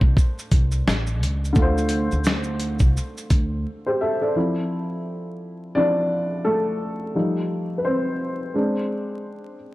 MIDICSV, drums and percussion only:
0, 0, Header, 1, 2, 480
1, 0, Start_track
1, 0, Key_signature, -1, "minor"
1, 0, Tempo, 697674
1, 1073, Time_signature, 4, 2, 24, 8
1, 6705, End_track
2, 0, Start_track
2, 0, Title_t, "Drums"
2, 9, Note_on_c, 9, 36, 82
2, 78, Note_off_c, 9, 36, 0
2, 116, Note_on_c, 9, 36, 98
2, 124, Note_on_c, 9, 82, 63
2, 184, Note_off_c, 9, 36, 0
2, 193, Note_off_c, 9, 82, 0
2, 267, Note_on_c, 9, 82, 53
2, 336, Note_off_c, 9, 82, 0
2, 354, Note_on_c, 9, 42, 65
2, 354, Note_on_c, 9, 82, 46
2, 355, Note_on_c, 9, 36, 89
2, 423, Note_off_c, 9, 42, 0
2, 423, Note_off_c, 9, 82, 0
2, 424, Note_off_c, 9, 36, 0
2, 492, Note_on_c, 9, 82, 52
2, 561, Note_off_c, 9, 82, 0
2, 602, Note_on_c, 9, 38, 111
2, 612, Note_on_c, 9, 82, 61
2, 671, Note_off_c, 9, 38, 0
2, 681, Note_off_c, 9, 82, 0
2, 734, Note_on_c, 9, 82, 43
2, 803, Note_off_c, 9, 82, 0
2, 846, Note_on_c, 9, 42, 66
2, 846, Note_on_c, 9, 82, 48
2, 915, Note_off_c, 9, 42, 0
2, 915, Note_off_c, 9, 82, 0
2, 995, Note_on_c, 9, 82, 48
2, 1063, Note_off_c, 9, 82, 0
2, 1068, Note_on_c, 9, 82, 62
2, 1073, Note_on_c, 9, 36, 118
2, 1137, Note_off_c, 9, 82, 0
2, 1142, Note_off_c, 9, 36, 0
2, 1223, Note_on_c, 9, 82, 48
2, 1292, Note_off_c, 9, 82, 0
2, 1299, Note_on_c, 9, 42, 63
2, 1299, Note_on_c, 9, 82, 45
2, 1368, Note_off_c, 9, 42, 0
2, 1368, Note_off_c, 9, 82, 0
2, 1455, Note_on_c, 9, 82, 37
2, 1523, Note_off_c, 9, 82, 0
2, 1542, Note_on_c, 9, 82, 71
2, 1560, Note_on_c, 9, 38, 109
2, 1611, Note_off_c, 9, 82, 0
2, 1629, Note_off_c, 9, 38, 0
2, 1675, Note_on_c, 9, 82, 49
2, 1744, Note_off_c, 9, 82, 0
2, 1785, Note_on_c, 9, 42, 54
2, 1785, Note_on_c, 9, 82, 41
2, 1854, Note_off_c, 9, 42, 0
2, 1854, Note_off_c, 9, 82, 0
2, 1920, Note_on_c, 9, 82, 42
2, 1928, Note_on_c, 9, 36, 83
2, 1989, Note_off_c, 9, 82, 0
2, 1996, Note_off_c, 9, 36, 0
2, 2043, Note_on_c, 9, 82, 65
2, 2112, Note_off_c, 9, 82, 0
2, 2184, Note_on_c, 9, 82, 49
2, 2253, Note_off_c, 9, 82, 0
2, 2272, Note_on_c, 9, 42, 63
2, 2272, Note_on_c, 9, 82, 44
2, 2274, Note_on_c, 9, 36, 87
2, 2341, Note_off_c, 9, 42, 0
2, 2341, Note_off_c, 9, 82, 0
2, 2343, Note_off_c, 9, 36, 0
2, 6705, End_track
0, 0, End_of_file